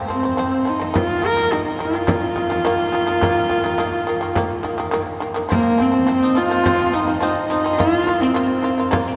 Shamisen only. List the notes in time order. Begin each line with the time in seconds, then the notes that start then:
0.08 F3 C4
0.23 F3 C4
0.37 F3 C4
0.65 F3 C4
0.80 F3 C4
0.94 D#3 A#3
1.22 D#3 A#3
1.37 D#3 A#3
1.51 D#3 A#3
1.79 D#3 A#3
1.93 D#3 A#3
2.07 D#3 A#3
2.36 D#3 A#3
2.50 D#3 A#3
2.65 D#3 A#3
2.92 D#3 A#3
3.07 D#3 A#3
3.21 D#3 A#3
3.50 D#3 A#3
3.64 D#3 A#3
3.78 D#3 A#3
4.07 D#3 A#3
4.21 D#3 A#3
4.35 D#3 A#3
4.63 D#3 A#3
4.78 D#3 A#3
4.91 D#3 A#3
5.20 D#3 A#3
5.34 D#3 A#3
5.49 F3 C4
5.78 F3 C4
5.92 F3 C4
6.07 F3 C4
6.35 F3 C4
6.50 F3 C4
6.64 F3 C4
6.92 F3 C4
7.07 F3 C4
7.21 F3 C4
7.50 F3 C4
7.64 F3 C4
7.78 A#3 F4
8.07 A#3 F4
8.20 A#3 F4
8.34 A#3 F4
8.63 A#3 F4
8.78 A#3 F4
8.91 A#3 F4